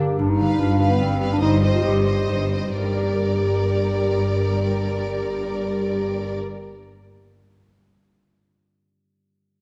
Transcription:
Already playing: G2 A#3 D4 G4
0.00 D3 A#3
0.19 G1 G2 D4
0.29 D#4
0.39 D3 G3 B4 F5
0.59 G1 G2 D4 F4
0.79 G3 B4 F5
0.90 B3
1.00 G1 G2 C4 F4
1.20 G3 B3 B4 F5
1.33 D4
1.40 G1 G2 G3 D#4 C5 D#5
1.61 G3 C5 D#5
1.74 F4
1.83 G1 G2 D#4 G4
2.04 G3 C5 D#5
2.29 G1 G2 D#4
2.52 G3 C4 C5 D#5
2.76 G1 G2 G3 G4 A#4 D5
2.83 G3
2.91 A#3
2.97 D4
3.04 G4
3.12 D5

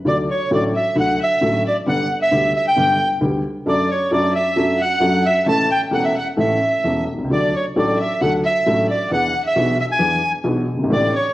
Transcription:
0.04 D2 D3 F#3 A3 F#4 D5
0.30 C#5
0.51 A1 A2 D3 F#3 A3 F#4 D5
0.75 E5
0.95 D2 D3 F#3 A3 F#4 F#5
1.00 F#5
1.20 E5
1.41 A1 A2 D3 F#3 A3 F#4
1.66 D5
1.86 G1 G2 D3 G3 B3 G4 F#5
2.22 E5
2.31 D2 D3 G3 B3 G4
2.55 E5
2.66 G5
2.76 G1 G2 D3 G3 B3 G4
3.21 D2 D3 G3 B3 G4
3.66 F#2 F#3 A3 D4 A4 D5
3.90 C#5
4.11 F#2 F#3 A3 D4 A4 D5
4.34 E5
4.56 F#2 F#3 A3 D4 A4
4.79 F#5
5.00 F#2 F#3 A3 D4 A4
5.25 E5
5.46 A1 A2 E3 A3 C#4 A4 A5
5.71 G5
5.91 E1 E2 E3 A3 C#4 A4 F#5
6.04 E5
6.14 F#5
6.18 F#5
6.37 A1 A2 E3 A3 C#4 A4 E5
6.84 E1 E2 E3 A3 C#4 A4
7.13 B1
7.18 C2
7.24 C#2
7.30 D2 D3 F#3 A3 D4 A4 D5
7.54 C#5
7.76 A1 A2 F#3 A3 D4 A4 D5
7.98 E5
8.21 D2 D3 F#3 A3 D4 A4 F#5
8.44 E5
8.66 A1 A2 F#3 A3 D4 A4
8.89 D5
9.11 E2 E3 B3 D4 G#4 F#5
9.46 E5
9.56 B1 B2 E3 B3 D4 G#4
9.79 E5
9.91 G#5
9.99 E2 E3 B3 D4 G#4
10.44 B1 B2 E3 B3 D4 G#4
10.74 F#1
10.79 G1
10.84 G#1
10.90 A1 A2 E3 A3 D4 G4 D5
11.14 C#5

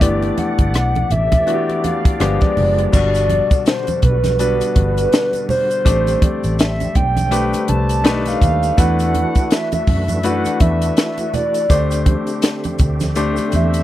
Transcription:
Already playing: E3 A3 G4 D5
0.00 G1 E3 A3 B3 D4 G4 D5, kick, closed hi-hat, muted conga
0.23 closed hi-hat, muted conga
0.38 F#5, closed hi-hat, high conga
0.58 G1, kick, closed hi-hat
0.74 B1, cross-stick, closed hi-hat, muted conga
0.95 closed hi-hat, muted conga, high conga
1.10 A1 E5, closed hi-hat, low conga
1.32 kick, cross-stick, closed hi-hat, high conga, low conga
1.46 E3 A3 B3 D4 F#4, closed hi-hat, muted conga
1.54 G4
1.69 closed hi-hat, muted conga
1.84 F5, closed hi-hat, high conga
2.05 kick, closed hi-hat
2.19 G1 F3 G#3 B3 D4 F4 G4, cross-stick, closed hi-hat
2.41 D5, kick, cross-stick, closed hi-hat, high conga
2.57 F#1, open hi-hat, low conga
2.78 closed hi-hat
2.92 G1 B2 D3 G3 D4 F#4 D5, kick, crash, muted conga, shaker
3.15 closed hi-hat, shaker
3.30 closed hi-hat, high conga
3.51 kick, closed hi-hat, shaker
3.66 C5, snare, closed hi-hat, shaker
3.87 closed hi-hat, muted conga, high conga, shaker
4.02 B1 B4, kick, closed hi-hat, low conga
4.24 snare, closed hi-hat, high conga, shaker
4.39 G3 B3 D4 F#4 B4, closed hi-hat, muted conga, shaker
4.61 closed hi-hat, shaker
4.76 G1, kick, closed hi-hat, high conga
4.98 closed hi-hat, shaker
5.12 snare, closed hi-hat, shaker
5.33 closed hi-hat, muted conga, shaker
5.49 C5, open hi-hat, low conga, shaker
5.71 closed hi-hat, shaker
5.85 A1 A3 C4 D4 G4 C5, kick, closed hi-hat, muted conga, shaker
6.07 closed hi-hat, muted conga, shaker
6.22 D5, kick, closed hi-hat, high conga
6.44 A1, closed hi-hat, shaker
6.59 E5, snare, closed hi-hat, muted conga, shaker
6.80 closed hi-hat, high conga, shaker
6.95 B1 G5, kick, closed hi-hat, low conga
7.17 closed hi-hat, high conga, shaker
7.31 A3 C4 D4 G4 B4, closed hi-hat, muted conga, shaker
7.53 closed hi-hat, muted conga, shaker
7.68 C2 A5, closed hi-hat, high conga
7.89 closed hi-hat, shaker
8.04 B1 D#3 A3 D4 D#4 G4 B4, snare, closed hi-hat, muted conga, shaker
8.25 F5, snare, closed hi-hat, muted conga, shaker
8.41 D#2, kick, closed hi-hat, low conga, shaker
8.63 closed hi-hat, shaker
8.77 E2 E3 A3 D4 E4 F#4 B4 F#5, kick, closed hi-hat, muted conga, shaker
8.99 closed hi-hat, muted conga, shaker
9.14 closed hi-hat, high conga
9.35 kick, closed hi-hat, shaker
9.51 E5, snare, closed hi-hat, shaker
9.72 E5, closed hi-hat, muted conga, high conga, shaker
9.87 F#2, kick, open hi-hat, low conga
10.08 closed hi-hat, high conga, shaker
10.23 A3 D4 E4 F#4 B4 F#5, closed hi-hat, muted conga, shaker
10.45 closed hi-hat, muted conga, shaker
10.60 E2 E5, kick, closed hi-hat, high conga
10.82 closed hi-hat, shaker
10.97 snare, closed hi-hat, shaker
11.17 closed hi-hat, muted conga, shaker
11.34 D5, closed hi-hat, low conga, shaker
11.54 closed hi-hat, shaker
11.69 D2 D3 A3 C4 D4 G4 C5, kick, closed hi-hat, muted conga, shaker
11.91 closed hi-hat, shaker
12.06 kick, closed hi-hat, high conga
12.27 closed hi-hat, shaker
12.42 snare, closed hi-hat, shaker
12.64 closed hi-hat, high conga, shaker
12.79 D2, kick, closed hi-hat, low conga, shaker
13.00 snare, closed hi-hat, high conga, shaker
13.15 A3 C4 D4 G4 C5, closed hi-hat, muted conga, shaker
13.37 closed hi-hat, muted conga, shaker
13.52 E2 E5, closed hi-hat, high conga, shaker
13.74 closed hi-hat, shaker

